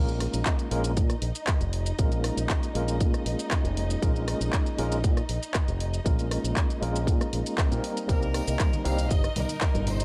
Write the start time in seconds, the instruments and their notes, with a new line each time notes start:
Already playing: fingered electric bass A#1, tine electric piano G#3 A#3 C#4 F4 A#4, string section D#4 D#5
0.08 shaker
0.20 cross-stick, open hi-hat
0.34 fingered electric bass A#1, closed hi-hat, shaker
0.46 kick, clap, closed hi-hat, shaker
0.59 closed hi-hat, shaker
0.71 fingered electric bass A#1, tine electric piano G#3 A#3 C#4 F4 A#4, open hi-hat
0.84 closed hi-hat, shaker
0.97 fingered electric bass A#2, kick, closed hi-hat, shaker
1.10 cross-stick, closed hi-hat, shaker
1.22 fingered electric bass A#1, open hi-hat
1.35 closed hi-hat, shaker
1.47 kick, cross-stick, clap, closed hi-hat, shaker
1.60 fingered electric bass F1, closed hi-hat, shaker
1.73 open hi-hat
1.86 closed hi-hat, shaker
1.98 fingered electric bass A#1, tine electric piano G#3 A#3 C#4 F4 A#4, kick, closed hi-hat, shaker
2.12 closed hi-hat, shaker
2.24 cross-stick, open hi-hat
2.37 fingered electric bass A#1, closed hi-hat, shaker
2.50 kick, clap, closed hi-hat, shaker
2.63 closed hi-hat, shaker
2.75 fingered electric bass A#1, tine electric piano G#3 A#3 C#4 F4 A#4, open hi-hat
2.88 closed hi-hat, shaker
3.00 fingered electric bass A#2, kick, closed hi-hat, shaker
3.14 muted fingered electric bass stroke, cross-stick, closed hi-hat, shaker
3.26 fingered electric bass A#1, open hi-hat
3.39 closed hi-hat, shaker
3.51 kick, cross-stick, clap, closed hi-hat, shaker
3.64 fingered electric bass F1, closed hi-hat, shaker
3.77 open hi-hat
3.90 closed hi-hat, shaker
4.02 fingered electric bass A#1, tine electric piano G#3 A#3 C#4 F4 A#4, kick, closed hi-hat, shaker
4.16 shaker
4.28 cross-stick, open hi-hat
4.40 fingered electric bass A#1, closed hi-hat, shaker
4.53 kick, clap, closed hi-hat, shaker
4.66 closed hi-hat, shaker
4.78 fingered electric bass A#1, tine electric piano G#3 A#3 C#4 F4 A#4, open hi-hat
4.92 closed hi-hat, shaker
5.04 fingered electric bass A#2, kick, closed hi-hat, shaker
5.17 cross-stick, closed hi-hat, shaker
5.29 fingered electric bass A#1, open hi-hat
5.43 closed hi-hat, shaker
5.54 kick, cross-stick, clap, closed hi-hat, shaker
5.68 fingered electric bass F1, closed hi-hat, shaker
5.80 open hi-hat
5.94 closed hi-hat, shaker
6.05 fingered electric bass A#1, tine electric piano G#3 A#3 C#4 F4 A#4, kick, closed hi-hat, shaker
6.19 closed hi-hat, shaker
6.31 cross-stick, open hi-hat
6.44 fingered electric bass A#1, closed hi-hat, shaker
6.56 kick, clap, closed hi-hat, shaker
6.70 closed hi-hat, shaker
6.81 fingered electric bass A#1, tine electric piano G#3 A#3 C#4 F4 A#4, open hi-hat
6.96 closed hi-hat, shaker
7.07 fingered electric bass A#2, kick, closed hi-hat, shaker
7.21 muted fingered electric bass stroke, cross-stick, closed hi-hat, shaker
7.33 fingered electric bass A#1, open hi-hat
7.46 closed hi-hat, shaker
7.58 kick, cross-stick, clap, closed hi-hat, shaker
7.71 fingered electric bass A#2, tine electric piano G3 A#3 C4 D#4 A#4, closed hi-hat, shaker
7.84 open hi-hat
7.97 closed hi-hat, shaker
8.08 fingered electric bass C2, tine electric piano G3 A#3 C4 D#4 A#4, string section D#4 D#5, violin section A#4, kick, closed hi-hat, tambourine, shaker
8.22 shaker
8.34 cross-stick, open hi-hat, tambourine
8.47 fingered electric bass C2, closed hi-hat, tambourine, shaker
8.60 kick, clap, closed hi-hat, shaker
8.73 closed hi-hat, high conga, shaker
8.85 fingered electric bass C2, tine electric piano G3 A#3 C4 D#4 A#4, violin section F5, open hi-hat, tambourine
8.98 closed hi-hat, tambourine, shaker
9.11 fingered electric bass G1, violin section D#5, kick, closed hi-hat, tambourine, shaker
9.24 cross-stick, closed hi-hat, shaker
9.36 fingered electric bass C2, violin section A#4, open hi-hat, tambourine, high conga, low conga
9.49 closed hi-hat, tambourine, shaker
9.61 kick, cross-stick, clap, closed hi-hat, tambourine, shaker
9.74 fingered electric bass G1, closed hi-hat, low conga, shaker
9.87 violin section C5, open hi-hat, tambourine, low conga
10.00 closed hi-hat, tambourine, shaker